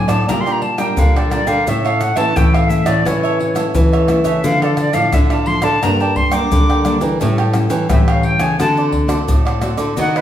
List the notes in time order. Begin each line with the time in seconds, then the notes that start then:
Already playing: A2 F#3 C4 D4 G#5
0.08 A2 A4 C5 D5 A5, pandeiro, tamborim, shaker
0.28 A#2 G3 D4 F4 A#4 D5 G5 A#5, pandeiro, tamborim, shaker, surdo
0.40 C6
0.46 A#4 D5 G5, pandeiro, shaker
0.52 A#5
0.61 A5, muted cavaquinho stroke, pandeiro
0.77 G3 D4 F4 A#4 D5 G5, pandeiro, tamborim, shaker
0.96 A#2 D3 F5, pandeiro, shaker, surdo
1.16 A4 A#4 D5 G5, pandeiro, tamborim, shaker
1.30 G3 D4 F4 A#4 D5 G5, pandeiro, tamborim, shaker
1.47 D3 A#4 D5 F5 G5, pandeiro, shaker
1.67 A2 A3 C#4 E4 A4 C#5 E5, pandeiro, shaker, surdo
1.85 A4 C#5 E5 F5, pandeiro, tamborim, shaker
2.00 F#5, pandeiro, tamborim, shaker
2.16 E3 A3 C#4 E4 A4 C#5 E5 A5, pandeiro, shaker
2.36 A2 E3 E4 A4 C#5 E5 G5, pandeiro, tamborim, shaker, surdo
2.53 A4 C#5 E5 F5, pandeiro, tamborim, shaker
2.69 A3 C#4 E4 E5, pandeiro, shaker
2.86 A2 A4 C#5 D5 E5, pandeiro, tamborim, shaker
3.05 A2 E3 A3 C#4 E4 A4 C#5 E5, pandeiro, tamborim, shaker, surdo
3.23 A4 C#5 E5, pandeiro, shaker
3.39 muted cavaquinho stroke, pandeiro
3.55 A3 C#4 E4 A4 C#5 E5, pandeiro, tamborim, shaker
3.75 E3, pandeiro, shaker, surdo
3.92 A4 C#5 E5, pandeiro, tamborim, shaker
4.08 A3 C#4 E4 A4 C#5 E5, pandeiro, tamborim, shaker
4.24 C#3 A4 C#5 E5, pandeiro, shaker
4.43 D3 F3 A3 E4 A4 D5 F5, pandeiro, shaker, surdo
4.62 A4 D5 F5, pandeiro, tamborim, shaker
4.77 D5, pandeiro, tamborim, shaker
4.93 A2 F3 A3 E4 A4 D5 F5, pandeiro, shaker
5.12 A2 D3 E4 A4 D5 E5 F5, pandeiro, tamborim, shaker, surdo
5.30 A4 D5 F5 A5, pandeiro, tamborim, shaker
5.46 F3 A3 E4 C6, pandeiro
5.62 D3 A4 D5 F5 A5, pandeiro, tamborim, shaker
5.82 G2 G3 A#3 D4 A#4 D5 G5 A#5, pandeiro, tamborim, shaker, surdo
6.00 A#4 D5 G5 A5, pandeiro, shaker
6.16 C6, muted cavaquinho stroke, pandeiro, surdo
6.31 G3 A#3 D4 A#4 D5 G5 D6, pandeiro, tamborim, shaker
6.51 D3, pandeiro, shaker, surdo
6.69 A#4 D5 G5, pandeiro, tamborim, shaker
6.85 G3 A#3 D4 A#4 D5 G5, pandeiro, tamborim, shaker
7.01 E3 A#4 D5 G5, pandeiro, shaker
7.20 A2 G3 C#4 E4 A4 C#5 G5, pandeiro, shaker, surdo
7.38 A4 C#5 G5, pandeiro, tamborim, shaker
7.53 G3 C#4 E4, pandeiro, tamborim, shaker
7.70 E3 A4 C#5 G5, pandeiro, shaker
7.89 A2 E3 G3 C#4 E4 A4 C#5 E5 G5, pandeiro, tamborim, shaker, surdo
8.08 A4 C#5 F5 G5, pandeiro, tamborim, shaker
8.23 G5, pandeiro
8.40 C#3 A4 C#5 G5 G#5, pandeiro, tamborim, shaker
8.58 D3 A3 C4 F#4 A4 C5 D5 A5, pandeiro, tamborim, shaker, surdo
8.77 A4 C5 D5, pandeiro, shaker
8.92 muted cavaquinho stroke, pandeiro, surdo
9.07 A3 C4 F#4 A4 C5 D5, pandeiro, tamborim, shaker
9.28 A2, pandeiro, shaker, surdo
9.45 A4 C5 D5, pandeiro, tamborim, shaker
9.61 A3 C4 F#4 A4 C5 D5, pandeiro, tamborim, shaker
9.77 D3 A4 C5 D5, pandeiro, shaker
9.96 D#3 B3 D#4 F#4 B4 D#5 F#5, pandeiro, shaker, surdo
10.15 B4 D#5 F#5, pandeiro, tamborim, shaker